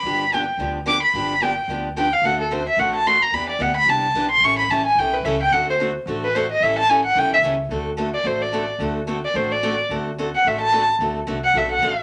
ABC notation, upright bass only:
X:1
M:4/4
L:1/8
Q:"Swing" 1/4=219
K:Dmix
V:1 name="Upright bass" clef=bass
G,,,4 D,,4 | G,,,4 D,,4 | D,,4 A,,,4 | E,,2 D,,2 C,,2 B,,,2 |
A,,,2 A,,,2 B,,,2 ^C,,2 | D,,4 A,,,4 | A,,,4 B,,,2 ^C,,2 | D,,4 A,,,4 |
D,,4 A,,,4 | D,,4 A,,,4 | D,,2 C,,2 B,,,2 A,,,2 |]